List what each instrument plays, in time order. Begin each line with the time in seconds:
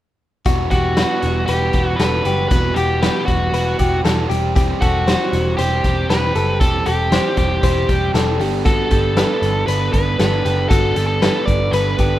0.46 picked electric bass E1, overdriven electric guitar E2 B2 E3 G3 B3 F#4, clean electric guitar F#4, kick, closed hi-hat
0.71 picked electric bass E1, overdriven electric guitar E3 G3 B3 F#4, lead electric guitar F#4, clean electric guitar G4, kick, closed hi-hat
0.97 overdriven electric guitar E2 B2 E3 G3 B3 F#4, clean electric guitar B4, snare, closed hi-hat
1.22 picked electric bass E1, snare, closed hi-hat
1.46 picked electric bass E1, overdriven electric guitar E3 G3, lead electric guitar G4, clean electric guitar B4, closed hi-hat
1.51 overdriven electric guitar B3 F#4
1.73 picked electric bass E1, overdriven electric guitar G3 B3 F#4, kick, closed hi-hat
1.77 overdriven electric guitar E3
1.86 lead electric guitar F#4
1.96 picked electric bass E1, lead electric guitar B4, snare, closed hi-hat
2.00 overdriven electric guitar E2 B2 E3 G3 B3 F#4, clean electric guitar A4
2.25 picked electric bass F#1, overdriven electric guitar E3 G3 B3 F#4, clean electric guitar G4, closed hi-hat
2.48 picked electric bass E1, overdriven electric guitar E2 B2 E3 G3 B3, clean electric guitar F#4, lead electric guitar B4, kick, closed hi-hat
2.52 overdriven electric guitar F#4
2.74 picked electric bass E1, overdriven electric guitar G3 B3 F#4, lead electric guitar G4, clean electric guitar G4, closed hi-hat
2.79 overdriven electric guitar E3
3.02 overdriven electric guitar E2 B2 E3 G3 B3 F#4, clean electric guitar B4, snare, closed hi-hat
3.26 picked electric bass E1, lead electric guitar F#4, kick, closed hi-hat
3.53 picked electric bass E1, overdriven electric guitar E3 G3 B3 F#4, clean electric guitar B4, closed hi-hat
3.79 picked electric bass E1, overdriven electric guitar E3 G3 B3 F#4, clean electric guitar G4, kick, closed hi-hat
4.04 picked electric bass E1, overdriven electric guitar E2 B2 E3 G3 B3 F#4, clean electric guitar A4, snare, closed hi-hat
4.30 picked electric bass E1, overdriven electric guitar G3 C4 G4, clean electric guitar G4, closed hi-hat
4.55 overdriven electric guitar E3 G3 C4 G4, clean electric guitar G4, kick, closed hi-hat
4.81 picked electric bass E1, overdriven electric guitar C4 G4, lead electric guitar F#4, clean electric guitar A4, kick, closed hi-hat
4.85 overdriven electric guitar G3
5.07 overdriven electric guitar E3 G3 C4, clean electric guitar C5, snare, closed hi-hat
5.33 picked electric bass E1, snare, closed hi-hat
5.57 picked electric bass E1, overdriven electric guitar E3 G3, lead electric guitar G4, clean electric guitar C5, closed hi-hat
5.61 overdriven electric guitar C4 G4
5.84 picked electric bass E1, overdriven electric guitar C4 G4, kick, closed hi-hat
5.88 overdriven electric guitar G3
6.09 picked electric bass E1, overdriven electric guitar E3 G3 C4 G4, lead electric guitar B4, clean electric guitar B4, snare, closed hi-hat
6.35 picked electric bass F#1, overdriven electric guitar G3 C4 G4, clean electric guitar A4, closed hi-hat
6.60 picked electric bass E1, overdriven electric guitar E3 G3 C4 G4, clean electric guitar G4, lead electric guitar A4, kick, closed hi-hat
6.86 picked electric bass E1, overdriven electric guitar G3 C4 G4, lead electric guitar G4, clean electric guitar A4, closed hi-hat
7.11 overdriven electric guitar E3 G3 C4 G4, clean electric guitar C5, snare, closed hi-hat
7.37 picked electric bass E1, lead electric guitar G4, kick, closed hi-hat
7.62 picked electric bass E1, overdriven electric guitar E3 G3 C4 G4, clean electric guitar C5, kick, closed hi-hat
7.88 picked electric bass E1, overdriven electric guitar G3 C4 G4, clean electric guitar G4, kick, closed hi-hat
8.14 picked electric bass E1, overdriven electric guitar E3 G3 C4 G4, clean electric guitar A4, snare, closed hi-hat
8.40 picked electric bass G1, overdriven electric guitar B3 D4 A4, clean electric guitar G4, open hi-hat
8.65 overdriven electric guitar G3 B3 D4 A4, clean electric guitar F#4, lead electric guitar A4, kick, closed hi-hat
8.90 picked electric bass G1, overdriven electric guitar B3 D4 A4, clean electric guitar G4, kick, closed hi-hat
9.17 overdriven electric guitar G3 B3 D4 A4, clean electric guitar B4, snare, closed hi-hat
9.42 picked electric bass G1, snare, closed hi-hat
9.67 picked electric bass G1, overdriven electric guitar G3 B3 D4 A4, lead electric guitar B4, clean electric guitar B4, closed hi-hat
9.93 picked electric bass G1, overdriven electric guitar B3 D4 A4, lead electric guitar B4, kick, closed hi-hat
10.19 picked electric bass G1, overdriven electric guitar G3 B3 D4 A4, clean electric guitar A4, snare, closed hi-hat
10.45 picked electric bass F#1, overdriven electric guitar B3 D4 A4, clean electric guitar G4, closed hi-hat
10.69 picked electric bass G1, overdriven electric guitar G3 B3 D4 A4, clean electric guitar F#4, lead electric guitar A4, kick, closed hi-hat
10.96 picked electric bass G1, overdriven electric guitar B3 D4 A4, clean electric guitar G4, closed hi-hat
11.07 lead electric guitar A4
11.21 overdriven electric guitar G3 B3 D4 A4, clean electric guitar B4, snare, closed hi-hat
11.45 picked electric bass G1, lead electric guitar D5, kick, closed hi-hat
11.71 picked electric bass G1, overdriven electric guitar G3 B3 D4, lead electric guitar B4, clean electric guitar B4, closed hi-hat
11.76 overdriven electric guitar A4
11.98 picked electric bass G1, overdriven electric guitar B3 D4 A4, clean electric guitar G4, kick, closed hi-hat